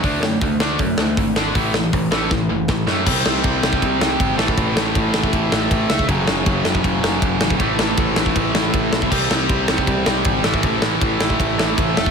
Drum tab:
CC |----------------|----------------|x---------------|----------------|
RD |----------------|----------------|----x---x---x---|x---x---x---x---|
HH |o---o---o---o---|o---o-----------|----------------|----------------|
SD |--o---o---o---o-|--o---o-o---o-o-|--o---o---o---o-|--o---o---o---o-|
BD |o---o---o---o---|o---o---o---o---|o---o--oo---o--o|o---o--oo---o--o|

CC |----------------|----------------|x---------------|----------------|
RD |x---x---x---x---|x---x---x---x---|----x---x---x---|x---x---x---x---|
HH |----------------|----------------|----------------|----------------|
SD |--o---o---o---o-|--o---o---o---o-|--o---o---o---o-|--o---o---o---o-|
BD |o---o--oo---o--o|o---o--oo---o--o|o---o--oo---o--o|o---o--oo---o--o|